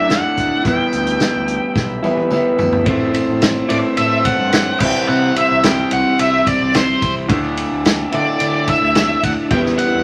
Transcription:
0.00 0.19 F#2 medium
0.00 0.11 E4 medium
0.00 2.83 E4 medium
0.00 0.64 A4 medium
0.00 0.64 D5 medium
0.00 0.12 E5 medium
0.00 0.62 E5 medium
0.09 0.63 D3 medium
0.09 0.64 A3 medium
0.09 0.64 D4 medium
0.09 0.67 E4 medium
0.09 0.62 F#5 loud
0.09 snare loud
0.09 closed hi-hat medium
0.09 tambourine medium
0.37 0.48 D2 medium
0.37 kick medium
0.37 closed hi-hat medium
0.37 tambourine medium
0.64 0.76 E2 medium
0.64 2.01 E3 medium
0.64 2.02 G3 medium
0.64 2.02 B3 medium
0.64 2.01 E4 medium
0.64 2.85 G4 medium
0.64 2.85 B4 medium
0.64 2.85 E5 medium
0.64 kick medium
0.64 closed hi-hat medium
0.64 tambourine soft
0.68 2.29 G5 medium
0.92 1.15 D2 medium
0.92 closed hi-hat medium
0.92 tambourine medium
1.07 closed hi-hat medium
1.20 snare loud
1.20 closed hi-hat medium
1.20 tambourine medium
1.35 1.56 D2 medium
1.47 closed hi-hat medium
1.47 tambourine soft
1.75 1.98 B1 medium
1.75 kick loud
1.75 snare medium
1.75 tambourine medium
2.03 2.26 E3 medium
2.03 2.29 E3 medium
2.03 2.30 G3 medium
2.03 2.30 B3 medium
2.03 2.29 E4 medium
2.03 high tom medium
2.03 tambourine medium
2.17 high tom medium
2.30 2.84 E3 medium
2.30 2.85 G3 medium
2.30 2.86 B3 medium
2.30 2.86 E4 medium
2.30 mid tom medium
2.30 tambourine medium
2.58 2.81 D2 medium
2.58 floor tom medium
2.58 tambourine medium
2.72 floor tom medium
2.84 3.19 A1 loud
2.84 3.67 A2 medium
2.84 3.71 E3 medium
2.84 3.68 A3 medium
2.84 3.69 C4 medium
2.84 10.03 E4 medium
2.84 3.68 E4 medium
2.84 4.79 A4 medium
2.84 4.79 C5 medium
2.84 10.03 E5 medium
2.84 kick loud
2.84 ride medium
3.01 tambourine soft
3.14 ride medium
3.14 tambourine medium
3.28 3.61 A1 medium
3.41 snare loud
3.41 ride medium
3.41 tambourine medium
3.68 3.81 A2 medium
3.68 4.79 A2 medium
3.68 4.80 E3 medium
3.68 4.79 A3 medium
3.68 4.79 C4 medium
3.68 4.83 E4 medium
3.68 3.77 D5 loud
3.68 ride medium
3.68 tambourine soft
3.97 4.30 A2 medium
3.97 4.26 E5 loud
3.97 ride loud
3.97 tambourine medium
4.11 tambourine soft
4.25 4.79 F#5 loud
4.25 kick medium
4.25 ride medium
4.25 tambourine medium
4.39 4.71 G2 medium
4.52 snare loud
4.52 ride loud
4.52 tambourine loud
4.79 4.91 C2 medium
4.79 5.61 C3 medium
4.79 5.63 E3 medium
4.79 5.62 G3 medium
4.79 5.63 C4 loud
4.79 5.66 E4 loud
4.79 7.28 G4 medium
4.79 7.27 C5 medium
4.79 5.08 G5 loud
4.79 kick loud
4.79 tambourine medium
4.79 crash loud
4.94 tambourine soft
5.08 5.30 C3 loud
5.08 5.34 F#5 loud
5.22 tambourine soft
5.36 5.65 E5 medium
5.36 ride medium
5.36 tambourine medium
5.51 5.83 C2 medium
5.63 7.00 C3 medium
5.63 7.28 E3 medium
5.63 7.01 G3 medium
5.63 7.01 C4 medium
5.63 7.32 E4 medium
5.63 5.92 G5 medium
5.63 snare loud
5.63 ride loud
5.63 tambourine loud
5.91 6.02 C2 loud
5.91 6.18 F#5 loud
5.91 ride medium
5.91 tambourine soft
6.18 6.41 C2 loud
6.18 6.45 E5 loud
6.18 ride loud
6.18 tambourine medium
6.32 tambourine soft
6.46 6.73 D5 medium
6.46 kick medium
6.46 ride medium
6.46 tambourine medium
6.61 6.93 C2 medium
6.74 7.14 C5 medium
6.74 snare loud
6.74 ride loud
6.74 tambourine loud
7.02 7.30 C2 medium
7.02 kick medium
7.02 ride medium
7.02 tambourine medium
7.16 tambourine soft
7.29 7.62 D2 loud
7.29 8.10 D3 loud
7.29 8.11 A3 medium
7.29 8.12 D4 loud
7.29 8.11 E4 loud
7.29 9.49 A4 medium
7.29 9.49 D5 medium
7.29 kick loud
7.29 ride medium
7.43 tambourine soft
7.57 ride medium
7.57 tambourine medium
7.72 8.04 D2 medium
7.85 snare loud
7.85 ride loud
7.85 tambourine loud
8.12 8.24 D3 loud
8.12 9.50 D3 medium
8.12 9.50 A3 medium
8.12 9.50 D4 medium
8.12 9.54 E4 medium
8.12 8.69 D5 loud
8.12 ride medium
8.12 tambourine soft
8.40 8.73 D3 medium
8.40 ride medium
8.40 tambourine medium
8.54 tambourine soft
8.68 9.26 E5 medium
8.68 kick medium
8.68 ride medium
8.68 tambourine medium
8.82 9.15 D2 medium
8.95 snare loud
8.95 ride medium
8.95 tambourine medium
9.23 9.34 D2 loud
9.23 9.32 F#5 loud
9.23 kick medium
9.23 ride medium
9.23 tambourine medium
9.38 tambourine soft
9.50 9.73 E2 loud
9.50 10.03 E3 medium
9.50 10.03 G3 medium
9.50 10.03 B3 medium
9.50 10.03 G4 medium
9.50 10.03 B4 medium
9.50 9.59 G5 loud
9.50 kick loud
9.50 ride medium
9.50 tambourine soft
9.54 10.03 E4 medium
9.66 snare soft
9.78 10.03 F#5 loud
9.78 ride medium
9.78 tambourine medium
9.94 10.03 E2 medium

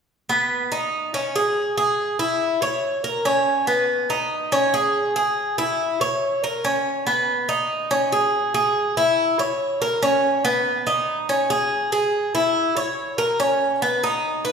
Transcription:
0.29 0.70 B3 medium
0.72 1.13 D#4 medium
1.14 1.34 C#4 medium
1.36 1.76 G#4 medium
1.78 2.18 G#4 medium
2.19 2.61 E4 medium
2.62 3.03 C#5 medium
3.04 3.25 A#4 medium
3.25 3.66 C#4 medium
3.67 4.09 B3 medium
4.10 4.51 D#4 medium
4.52 4.73 C#4 medium
4.74 5.15 G#4 medium
5.16 5.57 G#4 medium
5.58 5.99 E4 medium
6.01 6.42 C#5 medium
6.44 6.64 A#4 medium
6.65 7.05 C#4 medium
7.07 7.48 B3 medium
7.49 7.90 D#4 medium
7.91 8.11 C#4 medium
8.12 8.53 G#4 medium
8.54 8.95 G#4 medium
8.97 9.38 E4 medium
9.39 9.80 C#5 medium
9.82 10.02 A#4 medium
10.03 10.43 C#4 medium
10.45 10.86 B3 medium
10.87 11.28 D#4 medium
11.29 11.50 C#4 medium
11.50 11.91 G#4 medium
11.92 12.33 G#4 medium
12.35 12.75 E4 medium
12.77 13.17 C#5 medium
13.18 13.39 A#4 medium
13.40 13.81 C#4 medium
13.82 14.02 B3 medium
14.04 14.44 D#4 medium
14.45 14.52 B4 medium

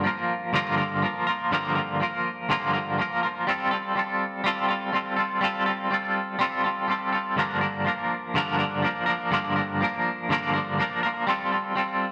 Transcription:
0.04 0.54 F3 medium
0.04 0.54 A#3 medium
0.04 0.55 F4 medium
0.04 0.55 A#4 medium
0.53 1.05 G2 medium
0.53 1.02 D3 medium
0.53 0.81 F3 medium
0.53 0.79 A#3 medium
0.53 0.79 F4 medium
0.53 0.76 A#4 medium
0.78 1.02 F3 medium
0.78 1.02 A#3 medium
0.78 1.04 F4 medium
0.78 1.04 A#4 medium
1.02 1.30 F3 medium
1.02 1.28 A#3 medium
1.02 1.28 F4 medium
1.02 1.26 A#4 medium
1.27 1.52 F3 medium
1.27 1.52 A#3 medium
1.27 1.54 F4 medium
1.27 1.53 A#4 medium
1.51 2.03 G2 medium
1.51 2.01 D3 medium
1.51 1.79 F3 medium
1.51 1.76 A#3 medium
1.51 1.76 F4 medium
1.51 1.74 A#4 medium
1.75 2.00 F3 soft
1.75 2.00 A#3 soft
1.75 2.02 F4 medium
1.75 2.02 A#4 medium
2.00 2.50 F3 medium
2.00 2.50 A#3 medium
2.00 2.51 F4 medium
2.00 2.51 A#4 medium
2.49 3.01 G2 medium
2.49 2.98 D3 medium
2.49 2.77 F3 medium
2.49 2.75 A#3 medium
2.49 2.74 F4 loud
2.49 2.72 A#4 medium
2.73 2.98 F3 medium
2.73 2.98 A#3 medium
2.73 3.00 F4 medium
2.73 3.00 A#4 medium
2.98 3.26 F3 medium
2.98 3.24 A#3 medium
2.98 3.24 F4 medium
2.98 3.22 A#4 medium
3.23 3.47 F3 medium
3.23 3.47 A#3 medium
3.23 3.49 F4 medium
3.23 3.46 A#4 medium
3.47 3.95 G3 medium
3.47 3.74 C4 medium
3.47 3.73 F4 medium
3.47 3.71 A4 medium
3.71 3.97 C4 soft
3.71 3.98 F4 soft
3.71 3.98 A4 medium
3.95 4.44 G3 medium
3.95 4.44 C4 medium
3.95 4.46 F4 medium
3.95 4.46 A4 medium
4.44 4.92 G3 medium
4.44 4.71 C4 medium
4.44 4.70 F4 medium
4.44 4.67 A4 loud
4.68 4.93 C4 medium
4.68 4.95 F4 medium
4.68 4.95 A4 medium
4.93 5.41 G3 medium
4.93 5.19 C4 medium
4.93 5.18 F4 medium
4.93 5.15 A4 medium
5.16 5.41 C4 medium
5.16 5.43 F4 medium
5.16 5.43 A4 medium
5.41 5.90 G3 medium
5.41 5.68 C4 medium
5.41 5.67 F4 medium
5.41 5.65 A4 medium
5.66 5.91 C4 medium
5.66 5.93 F4 medium
5.66 5.93 A4 medium
5.91 6.38 G3 medium
5.91 6.39 C4 medium
5.91 6.41 F4 medium
5.91 6.41 A4 medium
6.39 6.87 G3 medium
6.39 6.66 C4 medium
6.39 6.66 F4 medium
6.39 6.63 A4 medium
6.64 6.88 C4 medium
6.64 6.90 F4 medium
6.64 6.90 A4 medium
6.88 7.38 G3 medium
6.88 7.15 C4 medium
6.88 7.14 F4 medium
6.88 7.11 A4 medium
7.13 7.37 C4 soft
7.13 7.39 F4 medium
7.13 7.36 A4 medium
7.36 7.88 G2 medium
7.36 7.86 D3 medium
7.36 7.64 F3 medium
7.36 7.63 A#3 medium
7.36 7.62 D4 medium
7.36 7.61 A#4 medium
7.61 7.84 F3 soft
7.61 7.86 A#3 medium
7.61 7.87 D4 soft
7.61 7.88 A#4 medium
7.85 8.35 F3 medium
7.85 8.35 A#3 medium
7.85 8.36 D4 medium
7.85 8.37 A#4 medium
8.34 8.85 G2 medium
8.34 8.84 D3 medium
8.34 8.62 F3 medium
8.34 8.60 A#3 medium
8.34 8.59 D4 medium
8.34 8.57 A#4 loud
8.59 8.82 F3 medium
8.59 8.83 A#3 medium
8.59 8.83 D4 medium
8.59 8.84 A#4 medium
8.82 9.09 F3 medium
8.82 9.07 A#3 medium
8.82 9.06 D4 medium
8.82 9.05 A#4 medium
9.06 9.32 F3 medium
9.06 9.32 A#3 medium
9.06 9.33 D4 medium
9.06 9.33 A#4 medium
9.31 9.84 G2 medium
9.31 9.81 D3 medium
9.31 9.59 F3 medium
9.31 9.57 A#3 medium
9.31 9.56 D4 medium
9.31 9.55 A#4 medium
9.56 9.80 F3 soft
9.56 9.81 A#3 medium
9.56 9.82 D4 medium
9.56 9.83 A#4 medium
9.81 10.31 F3 medium
9.81 10.31 A#3 medium
9.81 10.31 D4 medium
9.81 10.32 A#4 medium
10.29 10.81 G2 medium
10.29 10.79 D3 medium
10.29 10.57 F3 medium
10.29 10.55 A#3 medium
10.29 10.54 D4 medium
10.29 10.52 A#4 medium
10.54 10.78 F3 medium
10.54 10.78 A#3 medium
10.54 10.79 D4 medium
10.54 10.81 A#4 medium
10.78 11.06 F3 medium
10.78 11.04 A#3 medium
10.78 11.03 D4 medium
10.78 11.02 A#4 medium
11.03 11.26 F3 medium
11.03 11.27 A#3 medium
11.03 11.27 D4 medium
11.03 11.26 A#4 medium
11.27 11.75 G3 medium
11.27 11.55 C4 medium
11.27 11.53 F4 medium
11.27 11.51 A4 medium
11.52 11.76 C4 soft
11.52 11.78 F4 medium
11.52 11.78 A4 medium
11.75 12.12 G3 medium
11.75 12.12 C4 medium
11.75 12.12 F4 medium
11.75 12.12 A4 medium

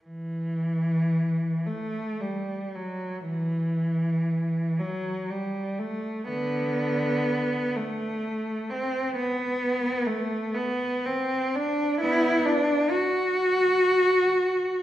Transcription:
0.05 1.64 E3 medium
1.67 2.20 A3 medium
2.21 2.74 G3 soft
2.76 3.26 F#3 soft
3.26 4.76 E3 medium
4.80 5.29 F#3 medium
5.30 5.78 G3 soft
5.79 6.27 A3 medium
6.28 7.73 D3 medium
6.28 7.74 B3 medium
7.77 8.70 A3 medium
8.70 9.15 C4 medium
9.16 10.07 B3 medium
10.06 10.55 A3 medium
10.55 11.04 B3 medium
11.06 11.53 C4 medium
11.55 12.01 D4 medium
12.00 12.43 B3 medium
12.00 12.45 E4 medium
12.46 12.90 D4 medium
12.91 14.83 F#4 medium

